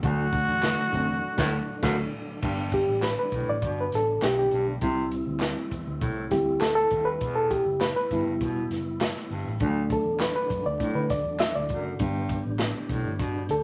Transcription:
0.02 D2 D3 F#3 A3 D4 F#4, kick, closed hi-hat, tambourine
0.33 D3 F#3 A3 F#4, kick, closed hi-hat, tambourine
0.47 E2
0.63 D3 F#3 A3 F#4, snare, clap, closed hi-hat, tambourine
0.93 F#2 D3 F#3 A3 C4, kick, closed hi-hat, tambourine
1.08 E2
1.37 D2 A2 D3 F#3 A3, kick, snare, crash
1.82 D2 F#2 D3 F#3 A3 F#4, kick, snare, crash
2.42 G1 G2 D3 G3 B3 D4, kick, crash, tambourine
2.72 G4, kick, closed hi-hat, tambourine
2.88 A1
3.02 B4, snare, clap, closed hi-hat, tambourine
3.19 B4
3.32 B1 A2, kick, closed hi-hat, tambourine
3.48 A1 D5
3.62 G1 B2, kick, closed hi-hat, tambourine
3.81 B4
3.92 A1 A4, snare, closed hi-hat, tambourine
4.22 B1 G4, snare, clap, closed hi-hat, tambourine
4.39 G4
4.51 B1 G2, closed hi-hat
4.81 C2 C3 G3 C4 E4, kick, closed hi-hat, tambourine
5.11 closed hi-hat, tambourine
5.27 D2
5.40 snare, clap, closed hi-hat, tambourine
5.71 E2, kick, closed hi-hat, tambourine
5.87 D2
6.01 C2 A2, kick, closed hi-hat, tambourine
6.31 D2 G3 C4 E4 G4, kick, snare, closed hi-hat, tambourine
6.61 A4, snare, clap, closed hi-hat, tambourine
6.75 A4
6.91 D#2 G2, kick, closed hi-hat, tambourine
7.05 B4
7.21 E1 E2 B3, kick, closed hi-hat, tambourine
7.35 A4
7.51 G4, kick, closed hi-hat, tambourine
7.66 F#1
7.81 B4, snare, clap, closed hi-hat, tambourine
7.96 B4
8.11 G1 G2 G3 B3 E4, kick, closed hi-hat, tambourine
8.26 F#1
8.41 E1 B2, kick, closed hi-hat, tambourine
8.70 F#1, snare, closed hi-hat, tambourine
9.01 snare, clap, closed hi-hat, tambourine
9.15 snare
9.30 G1 G2, open hi-hat
9.45 A1
9.60 D2 D3 F#3 A3 D4, kick, closed hi-hat, tambourine
9.90 A4, kick, closed hi-hat, tambourine
10.05 E2
10.20 B4, snare, clap, closed hi-hat, tambourine
10.36 B4
10.50 F#2, kick, closed hi-hat, tambourine
10.65 D2 D5
10.80 A2 F#3 A3 D4, kick, closed hi-hat
10.94 D3 B4
11.10 D2 D5, kick, snare, closed hi-hat, tambourine
11.24 E2
11.40 E5, snare, clap, closed hi-hat, tambourine
11.55 D2 D5
11.69 F#1 F#2, kick, closed hi-hat
11.99 G1 G2 G3 B3 D4 G4, kick, closed hi-hat, tambourine
12.29 kick, closed hi-hat, tambourine
12.45 A1
12.59 snare, clap, closed hi-hat, tambourine
12.89 B1 A2, kick, closed hi-hat, tambourine
13.04 G1
13.19 G2 B2, kick, closed hi-hat, tambourine
13.49 D2 A4, closed hi-hat, tambourine

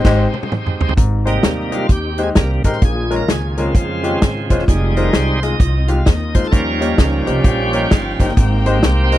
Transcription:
Already playing: G#3 C4 D#4 G4 C5
0.05 G#1 G#3 C4 D#4 G4 C5, kick, snare, crash
0.34 high tom
0.43 high tom
0.52 mid tom
0.66 mid tom
0.81 floor tom
0.89 floor tom
0.97 G#1 G#2 D#3 C4 D#4 G4, kick, closed hi-hat
1.25 C3 G3 G#3 A#3 D#4 G4 C5, closed hi-hat
1.43 D#2, snare, closed hi-hat
1.72 G#3 D#4 F4 G4 D#5, closed hi-hat
1.89 D#2 G4, kick, closed hi-hat
2.18 G#3 D#4 G4 C5, closed hi-hat
2.23 G#4
2.35 C2 C3 G3 A#3 A#4, kick, snare, closed hi-hat
2.64 A1 G#3 D#4 G4 A#4 C5, kick, closed hi-hat
2.73 snare
2.82 A#1 A#2 C#3 A#3 F4 G#4, kick, closed hi-hat
3.11 G#3 C#4 F4 A#4, closed hi-hat
3.16 A#4
3.28 C#2 G#4, snare, closed hi-hat
3.57 C#3 G#3 C4 C#4 F4 A#4, closed hi-hat
3.62 F4
3.75 F2 F4, kick, closed hi-hat
4.03 G#3 C#4 F4 G4, closed hi-hat
4.22 G#2, kick, snare, closed hi-hat
4.50 E1 G#3 C#4 F4 C5, kick, closed hi-hat
4.59 snare
4.67 F1 G3 G#3 C4 D#4 G#4, kick, closed hi-hat
4.96 G#3 D#4 F4 A#4 C5, closed hi-hat
5.13 C2 C5, snare, closed hi-hat
5.42 G#3 D#4 F4 G#4 D#5, snare, closed hi-hat
5.60 C2, kick, closed hi-hat
5.88 G#3 D#4 F4 G4 F5, closed hi-hat
6.05 D#2 D#5, kick, snare, closed hi-hat
6.35 G#3 D#4 F4 C5, kick, closed hi-hat
6.43 A4, snare
6.51 D#2 D#3 F3 G3 A#3 C#4 A#4 G5, kick, closed hi-hat
6.80 A#3 D#4 G4 C#5, closed hi-hat
6.98 C#2, kick, snare, closed hi-hat
7.26 C2 A#3 D#4 G4 C5, closed hi-hat
7.44 A#1, kick, closed hi-hat
7.73 A#3 D#4 G4 C#5, closed hi-hat
7.90 G1 F4, kick, snare, closed hi-hat
8.20 G1 A#3 D#4 G4 C5, kick, closed hi-hat
8.28 snare
8.37 G#1 G#2 G#3 A#3 C4 G4, kick, closed hi-hat
8.66 G#3 D#4 G4 C5, closed hi-hat
8.83 C2, snare, closed hi-hat
9.04 C5
9.12 G#3 D#4 G4 A#4 C5, snare, closed hi-hat

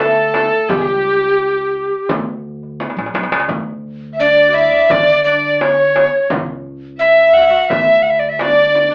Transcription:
Already playing: D3
0.00 A3 A4, frame drum
0.16 darbuka ka
0.34 darbuka tek, frame drum
0.69 C#2 G3 G4, darbuka dum, frame drum
1.58 darbuka ka
2.09 D2, darbuka dum, frame drum
2.28 darbuka ka
2.63 darbuka ka
2.80 darbuka tek, frame drum
2.90 darbuka ka
2.97 A1, darbuka tek
3.06 darbuka ka
3.14 B1, darbuka tek, frame drum
3.23 darbuka ka
3.31 C#2, darbuka tek
3.40 darbuka ka
3.48 D2, darbuka dum, frame drum
4.13 E5
4.20 D4 D5
4.37 darbuka ka
4.48 F#4
4.53 E4 E5
4.73 darbuka ka
4.89 D3 D4 D5, darbuka dum, frame drum
5.24 D4 D5, darbuka ka
5.61 C#4 C#5 D5, darbuka tek, frame drum
5.73 C#5
5.79 darbuka ka
5.96 darbuka tek, frame drum
6.30 C#2, frame drum, darbuka dum
6.99 E4 E5
7.18 darbuka ka
7.34 F#4 F#5
7.42 E4
7.50 F#4, darbuka ka
7.69 D2 E4 E5, darbuka dum, frame drum
8.03 F#5, darbuka ka
8.10 E5
8.19 D5
8.29 E5
8.39 D4 D5, darbuka tek, frame drum
8.58 darbuka ka
8.75 frame drum
8.91 D4

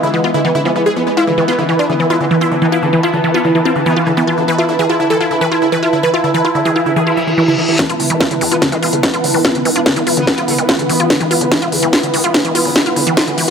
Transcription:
Already playing: E3 G#3 E4 B4 B5
0.03 D3 E4
0.14 E3 B3
0.24 B3 F4
0.34 D3 E4
0.45 E3 B3
0.55 D3 E4
0.65 F3 B3
0.76 F3 B3
0.86 G#3 G#4
0.96 F3 B3
1.07 G#3 B3
1.17 B3 E4 F4
1.27 D3 E3
1.38 E3 A5
1.48 B3 F4
1.58 D3 E3
1.69 E3
1.79 D4 F4
1.89 D3 E3 B3
2.00 E3
2.10 G#3 E4 F4
2.21 D3 E3 G#3
2.31 E3
2.41 E4 F4
2.52 D3 E3
2.62 E3
2.72 E4 F4
2.83 D3 E3
2.93 E3
3.03 E4 F4
3.14 D3 E3
3.24 E3
3.34 E3 B3 F4
3.45 D3 E3
3.55 E3
3.65 C4 F4
3.76 D3 E3
3.86 E3 B3
3.96 E3 F4
4.07 D3 E3
4.17 E3 B3
4.27 E3 F4
4.38 D3 E3
4.48 E3 E4 B4
4.58 E4 F4
4.69 D3 E4
4.79 E3 G#4
4.89 E4 F4
5.00 D3 E4
5.10 E3 A4
5.21 E4 F4
5.31 D3 E4
5.41 E3 B4
5.52 E4 F4
5.62 D3 E4
5.72 E3 B4
5.83 E4 F4
5.93 D3 E4
6.03 E3 B4
6.14 E4 F4
6.24 D3 E4
6.34 E3 B4
6.45 E4 F4
6.55 D3 E4
6.65 E3 G#4
6.76 E4 F4
6.86 D3 E4
6.96 E3 G#4, reverse cymbal
7.07 E4 F4
7.17 F3 E4
7.27 E3 E4
7.38 E3 E4
7.48 D3 E4
7.58 E3 E4
7.69 E3 E4
7.79 E3 B3, kick, snare, closed hi-hat
7.89 E1 F4, closed hi-hat
8.00 E1 D3, open hi-hat
8.10 E1 E3, closed hi-hat
8.21 F4, kick, snare, closed hi-hat
8.31 E1 D3, closed hi-hat
8.41 E2 E3, open hi-hat
8.52 E1 B3 F4, closed hi-hat
8.62 D3, kick, snare, closed hi-hat
8.72 E1 E3 G#3, closed hi-hat
8.83 E1 G#3 F4, open hi-hat
8.93 E1 D3 B5, closed hi-hat
9.03 E3, kick, snare, closed hi-hat
9.14 E1 F4, closed hi-hat
9.24 E1 D3, open hi-hat
9.34 D1 E3, open hi-hat
9.45 F4, kick, snare, closed hi-hat
9.55 E1 D3, closed hi-hat
9.65 E1 E3, open hi-hat
9.76 E1 D4 F4, closed hi-hat
9.86 D3 D4, kick, snare, closed hi-hat
9.96 E1 E3, closed hi-hat
10.07 E1 F4, open hi-hat
10.17 E1 D3 B3, closed hi-hat
10.27 E3, kick, snare, closed hi-hat
10.38 E1 F4, closed hi-hat
10.48 E1 D3, open hi-hat
10.58 E1 E3, closed hi-hat
10.69 F4, kick, snare, closed hi-hat
10.79 A1 D3, closed hi-hat
10.89 A1 E3, open hi-hat
11.00 A1 F4, closed hi-hat
11.10 D3, kick, snare, closed hi-hat
11.21 E1 E3, closed hi-hat
11.31 E1 F4, open hi-hat
11.41 E1 D3, closed hi-hat
11.52 E3, kick, snare, closed hi-hat
11.62 E1 F4, closed hi-hat
11.72 E2 D3, open hi-hat
11.83 E1 E3, closed hi-hat
11.93 F4, kick, snare, closed hi-hat
12.03 E1 D3, closed hi-hat
12.14 E1 E3, open hi-hat
12.24 E1 F4, closed hi-hat
12.34 D3, kick, snare, closed hi-hat
12.45 E1 E3, closed hi-hat
12.55 E1 F4, open hi-hat
12.65 D1 D3, open hi-hat
12.76 E3, kick, snare
12.86 E1 F4, closed hi-hat
12.96 E1 D3, open hi-hat
13.07 E1 E3, closed hi-hat
13.17 F4, kick, snare, closed hi-hat
13.27 E1 D3, closed hi-hat
13.38 E1 E3, open hi-hat

